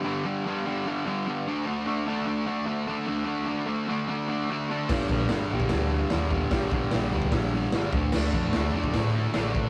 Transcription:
<<
  \new Staff \with { instrumentName = "Distorted electric guitar" } { \clef bass \time 4/4 \key g \minor \tempo 4 = 148 <g, d g>8 <g, d g>8 <g, d g>8 <g, d g>8 <g, d g>8 <g, d g>8 <g, d g>8 <d a d'>8 | <d a d'>8 <d a d'>8 <d a d'>8 <d a d'>8 <d a d'>8 <d a d'>8 <d a d'>8 <d a d'>8 | <d a d'>8 <d a d'>8 <d a d'>8 <d a d'>8 <d a d'>8 <d a d'>8 <d a d'>8 <d a d'>8 | <g, d g>8 <g, d g>8 <g, d g>8 <g, d g>8 <g, d g>8 <g, d g>8 <g, d g>8 <g, d g>8 |
<g, d g>8 <g, d g>8 <g, d g>8 <g, d g>8 <g, d g>8 <g, d g>8 <g, d g>8 <d a d'>8 | <d a d'>8 <d a d'>8 <d a d'>8 <d a d'>8 <d a d'>8 <d a d'>8 <d a d'>8 <d a d'>8 | }
  \new Staff \with { instrumentName = "Fingered electric bass" } { \clef bass \time 4/4 \key g \minor r1 | r1 | r1 | g,,8 bes,,8 g,,8 bes,,8 d,4 ees,4 |
g,,4 bes,,8 d,8 bes,,4 g,,8 d,8 | d,8 f,8 d,8 f,8 a,4 a,,4 | }
  \new DrumStaff \with { instrumentName = "Drums" } \drummode { \time 4/4 r4 r4 r4 r4 | r4 r4 r4 r4 | r4 r4 r4 r4 | <cymc bd sn>8 bd8 <hho sn>8. bd16 <hho bd sn>4 <hho sn>8 bd8 |
<hho bd sn>8 bd8 <hho sn>8. bd16 <hho bd sn>4 <hho sn>8 bd8 | <cymc sn>8 bd8 <hho sn>8. bd16 <hho bd sn>4 <hho sn>8 bd8 | }
>>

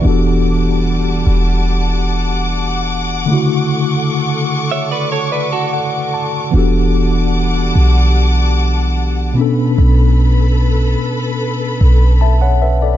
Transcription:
<<
  \new Staff \with { instrumentName = "String section" } { \time 4/4 \key e \dorian \tempo 4 = 74 << { <fis'' d'''>1~ | <fis'' d'''>1 | <fis'' d'''>2.~ <fis'' d'''>8 b'8~ | b'1 | } \\ { <g a''>1 | <a' cis'''>1 | <g a''>2.~ <g a''>8 <a' b''>8~ | <a' b''>1 | } >> }
  \new Staff \with { instrumentName = "Clean electric guitar" } { \time 4/4 \key e \dorian r1 | r4. r16 <cis'' e''>16 <b' d''>16 <a' cis''>16 b'16 <fis' a'>4~ <fis' a'>16 | r1 | r1 | }
  \new Staff \with { instrumentName = "Tine electric piano" } { \time 4/4 \key e \dorian << { r1 | r2 r8 d''8 fis''8 a''8 | r1 | r2. <e'' a''>16 <cis'' fis''>16 <b' e''>16 <a' d''>16 | } \\ { <e b d' fis' g' a'>1 | <cis d a e' fis'>1 | <e b d' fis' g' a'>2.~ <e b d' fis' g' a'>8 <b, b cis' d' a'>8~ | <b, b cis' d' a'>2.~ <b, b cis' d' a'>8 r8 | } >> }
  \new Staff \with { instrumentName = "808-style bass" } { \clef bass \time 4/4 \key e \dorian e,,4. e,,2~ e,,8 | r1 | e,,4. b,,2 r8 | b,,4. r4 b,,4. | }
>>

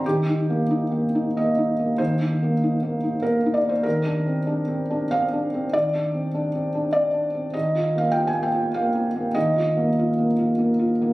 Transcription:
\new Staff \with { instrumentName = "Felt piano" } { \time 3/4 \key ees \major \tempo 4 = 98 << { g'2 ees''4 | c''2 bes'8 d''16 c''16 | bes'2 f''4 | d''2 d''4 |
ees''8. f''16 g''16 aes''16 g''8 f''4 | ees''4. r4. | } \\ { \tuplet 3/2 { ees8 ees'8 bes8 ees'8 bes8 ees'8 bes8 ees'8 bes8 } | \tuplet 3/2 { ees8 ees'8 bes8 ees'8 bes8 ees'8 bes8 ees'8 bes8 } | \tuplet 3/2 { ees8 d'8 c'8 d'8 c'8 d'8 c'8 d'8 c'8 } | \tuplet 3/2 { ees8 d'8 c'8 d'8 c'8 d'8 c'8 d'8 c'8 } |
\tuplet 3/2 { ees8 f'8 bes8 f'8 bes8 f'8 bes8 f'8 bes8 } | \tuplet 3/2 { ees8 f'8 bes8 f'8 bes8 f'8 bes8 f'8 bes8 } | } >> }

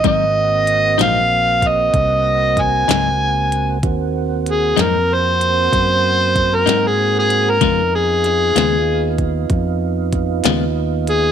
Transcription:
<<
  \new Staff \with { instrumentName = "Harmonica" } { \time 12/8 \key aes \mixolydian \tempo 4. = 63 ees''4. f''4 ees''4. aes''2 | r4 aes'8 bes'8 c''2~ c''16 bes'8 aes'8 aes'8 bes'16~ | bes'8 aes'2 r2. aes'8 | }
  \new Staff \with { instrumentName = "Tonewheel organ" } { \time 12/8 \key aes \mixolydian <bes c' ges'>1. | <bes c' ges'>1. | <ces' ees' f'>1. | }
  \new Staff \with { instrumentName = "Clean electric guitar" } { \time 12/8 \key aes \mixolydian <aes, ges c' ees'>8 r4 <aes, ges c' ees'>8 r2 r8 <aes, ges c' ees'>8 r4 | r4. <aes, ges c' ees'>8 r2 r8 <aes, ges c' ees'>8 r4 | <des aes ces' f'>8 r4 <des aes ces' f'>8 r2 r8 <des aes ces' f'>8 r4 | }
  \new Staff \with { instrumentName = "Fingered electric bass" } { \clef bass \time 12/8 \key aes \mixolydian aes,,4. bes,,4. c,4. des,4. | ees,4. f,4. ges,4. aes,4. | f,4. ees,4. f,4. ees,4. | }
  \new DrumStaff \with { instrumentName = "Drums" } \drummode { \time 12/8 <hh bd>4 hh8 <hh sn>4 <hh bd>8 <hh bd>4 <hh bd>8 <hh sn>4 hh8 | <hh bd>4 hh8 <hh sn>4 hh8 <hh bd>4 <hh bd>8 <hh sn>4 hh8 | <hh bd>4 <hh sn>8 <hh sn>4 <hh bd>8 <hh bd>4 <hh bd>8 <hh sn>4 hh8 | }
>>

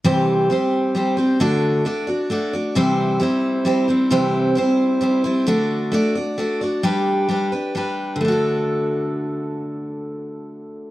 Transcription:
\new Staff \with { instrumentName = "Steel-string acoustic guitar" } { \time 3/4 \key d \mixolydian \tempo 4 = 132 <c e g c' g' c''>4 <g c' g' c''>4 <g c' g' c''>8 <g c' g' c''>8 | <d a d' fis' d''>4 <a d' fis' d''>8 <d' fis' d''>8 <a d' fis' d''>8 <d' fis' d''>8 | <c e g c' e' c''>4 <g c' e' c''>4 <g c' e' c''>8 <g c' e' c''>8 | <c e g c' e' c''>4 <g c' e' c''>4 <g c' e' c''>8 <g c' e' c''>8 |
<d a d' fis' d''>4 <a d' fis' d''>8 <d' fis' d''>8 <a d' fis' d''>8 <d' fis' d''>8 | <g d' g' b'>4 <g d' g' b'>8 <d' g' b'>8 <g d' g' b'>4 | <d a d' fis' a'>2.~ | <d a d' fis' a'>2. | }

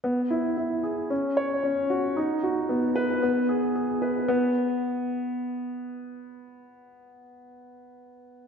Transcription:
\new Staff \with { instrumentName = "Upright piano" } { \time 4/4 \key e \major \tempo 4 = 113 b8 e'8 e'8 gis'8 cis'8 cis''8 cis'8 fis'8 | dis'8 fis'8 b8 b'8 b8 gis'8 gis'8 b'8 | b8 r2. r8 | r1 | }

